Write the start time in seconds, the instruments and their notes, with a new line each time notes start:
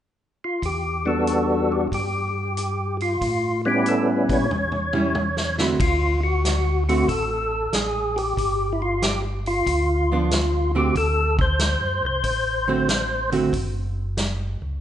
0.44 tonewheel organ F4
0.62 tonewheel organ E2 G4, kick, open hi-hat
1.05 tonewheel organ G3 B3 D4 F#4 A4
1.27 closed hi-hat
1.72 tonewheel organ G4
1.92 tonewheel organ G2 G4, kick, open hi-hat
2.57 closed hi-hat
3.00 tonewheel organ F4, open hi-hat
3.21 tonewheel organ A2, kick, open hi-hat
3.65 tonewheel organ G3 B3 C#4 E4 G4
3.86 tonewheel organ A4, closed hi-hat
4.29 tonewheel organ A#2, kick, open hi-hat
4.33 tonewheel organ C#5
4.50 tonewheel organ E2, mid tom
4.72 mid tom
4.93 hollow-body jazz guitar G3 C#4 E4, mid tom
5.15 mid tom
5.37 snare
5.58 hollow-body jazz guitar D3 A3 C4 F#4, tonewheel organ E4, snare
5.80 tonewheel organ D2 F4, kick, ride
6.23 tonewheel organ F#4
6.45 snare, closed hi-hat
6.89 hollow-body jazz guitar D3 A3 C4 F#4, tonewheel organ F#4, open hi-hat
7.08 tonewheel organ A1 A4, kick, open hi-hat
7.73 tonewheel organ A1 G#4, snare, closed hi-hat
8.16 tonewheel organ G4, open hi-hat
8.37 tonewheel organ G1, kick, open hi-hat
8.73 tonewheel organ E4
8.82 tonewheel organ F4
9.02 tonewheel organ G4, snare, closed hi-hat
9.46 tonewheel organ F4, open hi-hat
9.67 tonewheel organ D2, kick, open hi-hat
10.12 hollow-body jazz guitar F3 B3 D4
10.31 snare, closed hi-hat
10.75 hollow-body jazz guitar D3 A3 C4 F#4, tonewheel organ G4
10.95 tonewheel organ D2 A4, kick, open hi-hat
11.39 tonewheel organ C5, kick
11.59 snare, closed hi-hat
11.81 tonewheel organ F#2
12.02 tonewheel organ C2 C5
12.24 tonewheel organ A1, kick, open hi-hat
12.68 hollow-body jazz guitar D3 A3 C4 F#4
12.89 snare, closed hi-hat
13.32 hollow-body jazz guitar D3 A3 C4 F#4, open hi-hat
13.53 tonewheel organ F#1, kick, open hi-hat
14.17 snare, closed hi-hat
14.62 tonewheel organ C#2